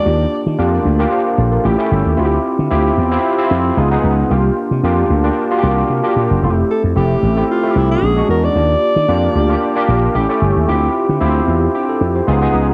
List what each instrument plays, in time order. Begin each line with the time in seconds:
Already playing: alto saxophone D5
0.05 slap bass D#2, tine electric piano A#3 D4 F4 G4
0.46 slap bass D#3
0.58 slap bass F2, tine electric piano A#3 D4 F4 G4
0.85 slap bass D2
0.99 tine electric piano A#3 D4 F4 G4
1.12 tine electric piano C5 F5
1.38 slap bass A#1, tine electric piano A4 D5
1.52 tine electric piano F4 A#4
1.64 slap bass A1, tine electric piano A3 C#4 E4 G4
1.78 tine electric piano A3 C#4 E4 G4
1.91 slap bass G1
2.06 slap bass D#2
2.17 slap bass D2, tine electric piano C4 E4 F4 F#4
2.25 tine electric piano G4
2.59 slap bass D3
2.71 slap bass D2, tine electric piano C4 E4 F4 G4
2.98 slap bass E2
3.11 tine electric piano C4 E4 F4 G4
3.38 tine electric piano C4 E4 F4 G4
3.51 slap bass F2
3.77 slap bass C#2, tine electric piano B3 D#4 F4 G#4
3.91 tine electric piano B3 D#4 F4 G#4
4.04 slap bass C#2
4.30 slap bass C2, tine electric piano A#3 D4 F4 G4
4.71 slap bass C3
4.83 slap bass F2, tine electric piano A#3 D4 F4 G4
5.10 slap bass D2
5.24 tine electric piano A#3 D4 F4 G4
5.51 tine electric piano A#3 D4 F4 F#4
5.58 tine electric piano G4
5.63 slap bass C2
5.90 slap bass C3
6.03 tine electric piano A#3 D4 F4 G4
6.16 slap bass A#2
6.31 slap bass F#1
6.42 slap bass F1, tine electric piano A3 C4 E4 F4
6.50 tine electric piano G4
6.71 alto saxophone A4
6.84 slap bass F2
6.95 slap bass F1, tine electric piano A3 C4 E4 G4, alto saxophone G4
7.23 slap bass A1
7.37 tine electric piano A3 C4 E4 G4
7.51 alto saxophone F4
7.63 tine electric piano A3 C4 E4 F4
7.71 tine electric piano G4
7.76 slap bass C2, alto saxophone E4
7.91 alto saxophone G#4
8.02 slap bass A#1, tine electric piano G#3 C#4 D4 F#4
8.16 tine electric piano G#3 C#4 D4 F#4
8.29 slap bass E2, alto saxophone A#4
8.44 alto saxophone D5
8.55 slap bass D#2, tine electric piano A#3 D4 F4 G4
8.96 slap bass D#3
9.08 slap bass F2, tine electric piano A#3 D4 F4 G4
9.35 slap bass D2
9.49 tine electric piano A#3 D4 F4 G4
9.75 tine electric piano A#3 D4 F4 G4
9.88 slap bass A#1
10.14 slap bass A1, tine electric piano A3 C#4 E4 G4
10.29 tine electric piano A3 C#4 E4 G4
10.42 slap bass G1
10.56 slap bass D#2
10.68 slap bass D2, tine electric piano C4 E4 F4 G4
11.09 slap bass D3
11.20 slap bass D2, tine electric piano C4 E4 F4 G4
11.48 slap bass E2
11.75 tine electric piano D4 G4
11.89 tine electric piano E4 A4
12.01 slap bass F2
12.15 tine electric piano G4 C5
12.27 slap bass C#2, tine electric piano B3 D#4 F4 G#4
12.41 tine electric piano B3 D#4 F4 G#4
12.54 slap bass C#2